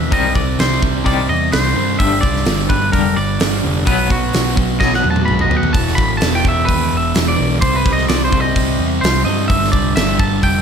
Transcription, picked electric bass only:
0.12 0.32 C2 loud
0.35 0.55 C2 medium
0.58 0.78 C2 medium
0.83 1.02 C2 medium
1.06 1.26 C2 medium
1.29 1.49 E2 medium
1.53 1.72 C2 medium
1.76 1.96 G2 medium
2.00 2.19 G1 loud
2.23 2.43 C2 medium
2.46 2.66 G1 medium
2.70 2.89 G1 medium
2.94 3.13 F1 medium
3.17 3.36 G1 loud
3.41 3.60 G1 medium
3.65 3.84 F1 medium
3.87 4.07 B1 loud
4.10 4.30 B1 medium
4.34 4.54 B1 medium
4.57 4.77 B1 medium
4.81 5.00 B1 medium
5.04 5.24 E2 medium
5.29 5.48 B1 medium
5.51 5.71 D#2 medium
5.75 5.94 E1 medium
5.98 6.18 A1 medium
6.22 6.41 E1 medium
6.45 6.64 E1 medium
6.69 6.88 D#2 medium
6.93 7.12 E1 medium
7.16 7.35 E1 medium
7.39 7.58 B1 medium
7.62 7.81 C2 loud
7.86 8.05 C2 medium
8.09 8.28 C2 medium
8.33 8.52 C2 medium
8.56 8.75 C2 medium
8.79 8.98 E2 loud
9.03 9.22 C2 medium
9.26 9.51 G2 medium
9.50 9.69 G1 loud
9.73 9.92 C2 medium
9.96 10.15 G1 medium
10.20 10.39 G1 medium
10.43 10.62 F1 medium

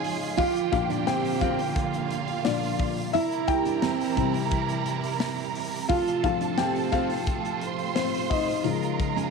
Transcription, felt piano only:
0.00 0.40 C#3 medium
0.00 0.40 C#4 medium
0.00 0.40 D#4 medium
0.00 0.40 C#5 loud
0.00 0.40 D#5 loud
0.38 0.71 F4 medium
0.38 0.70 F5 medium
0.72 1.72 A#2 medium
0.72 1.72 F3 medium
0.72 1.72 D4 medium
0.72 1.05 F4 medium
0.72 1.08 F5 loud
1.07 1.40 G4 medium
1.07 1.43 G5 loud
1.41 2.07 F4 medium
1.41 2.06 F5 loud
2.45 2.76 A#2 medium
2.45 2.77 F3 medium
2.45 3.11 D4 medium
2.45 3.16 D5 medium
3.13 3.46 E4 medium
3.13 3.49 E5 loud
3.48 4.83 G4 medium
3.48 4.82 G5 loud
4.16 5.85 C3 medium
4.16 5.85 G3 medium
4.16 5.86 E4 medium
5.89 6.22 F4 medium
5.89 6.21 F5 loud
6.23 8.62 F3 medium
6.23 8.62 A3 medium
6.23 7.96 C4 medium
6.23 6.57 F4 medium
6.23 6.59 F5 loud
6.58 6.91 G4 medium
6.58 6.94 G5 loud
6.92 7.93 F4 medium
6.92 7.99 F5 loud
7.95 8.05 C4 medium
7.95 8.03 C5 medium
8.30 8.96 D#4 medium
8.30 8.95 D#5 medium
8.65 9.30 C#3 medium
8.65 9.30 F3 medium
8.65 9.30 G#3 medium

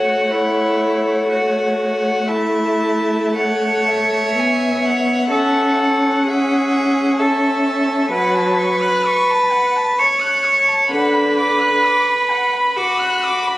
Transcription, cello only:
0.00 0.33 F#4 medium
0.31 1.29 E4 medium
1.30 2.29 F#4 medium
2.28 3.36 E4 medium
3.37 5.28 C#5 medium
5.31 6.25 A4 medium
6.27 7.21 G#4 medium
7.19 8.11 A4 medium
8.11 10.01 B4 loud
9.99 10.93 C#5 medium
10.91 12.78 B4 loud
12.77 13.58 F#4 medium

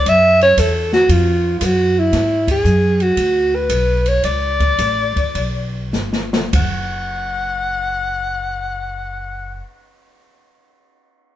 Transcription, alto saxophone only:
0.00 0.10 D5 loud
0.09 0.42 E5 loud
0.43 0.61 C#5 loud
0.60 0.93 A4 medium
0.94 1.13 F#4 loud
1.12 1.58 F4 medium
1.59 1.66 F4 medium
1.64 2.00 F#4 medium
1.99 2.49 E4 medium
2.51 3.04 G#4 loud
3.02 3.57 F#4 medium
3.55 4.10 B4 medium
4.08 4.24 C#5 medium
4.25 5.90 D5 loud
6.55 9.62 F#5 medium

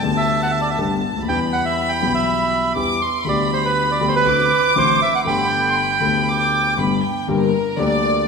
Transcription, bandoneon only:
0.17 0.41 E5 medium
0.42 0.51 F#5 medium
0.51 0.60 E5 medium
0.61 0.70 D5 soft
0.70 0.79 E5 soft
1.29 1.40 G5 medium
1.53 1.64 F#5 medium
1.66 1.91 E5 medium
1.89 2.13 G5 medium
2.15 2.73 E5 medium
3.29 3.51 D5 medium
3.53 3.64 C5 medium
3.65 3.90 B4 medium
3.91 4.09 D5 medium
4.08 4.15 C5 soft
4.16 4.74 B4 medium
4.78 5.01 C5 medium
5.02 5.14 E5 medium
5.15 5.21 F#5 medium
5.27 6.74 G5 medium

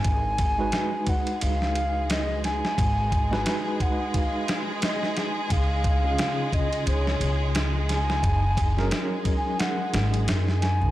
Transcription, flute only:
0.00 1.11 G#5 loud
1.09 1.44 F#5 loud
1.43 2.12 F5 loud
2.11 2.44 D#5 loud
2.45 3.83 G#5 loud
3.82 4.18 F#5 loud
4.16 4.57 F5 loud
4.83 5.19 D#5 loud
5.18 5.54 G#5 medium
5.52 6.56 F5 loud
6.54 6.87 D#5 medium
6.88 7.52 C#5 medium
7.89 8.88 G#5 loud
9.37 9.61 G#5 loud
9.59 10.28 F#5 loud
10.62 10.91 G#5 loud

